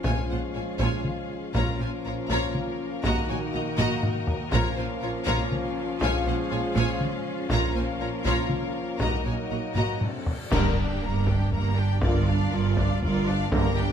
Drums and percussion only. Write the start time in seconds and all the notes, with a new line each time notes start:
0.04 taiko
0.79 taiko
1.04 taiko mid
1.55 taiko
2.30 taiko
2.55 taiko mid
3.04 taiko
3.78 taiko low-mid
4.03 taiko low-mid
4.27 taiko low
4.52 taiko
5.27 taiko
5.52 taiko mid
6.01 taiko
6.75 taiko
7.01 taiko mid
7.50 taiko
8.25 taiko
8.49 taiko mid
9.00 taiko
9.75 taiko low-mid
10.01 taiko low-mid
10.26 taiko low
10.52 concert bass drum, taiko, crash
11.27 taiko
11.52 taiko low
12.02 taiko
12.77 taiko
13.02 taiko low
13.52 taiko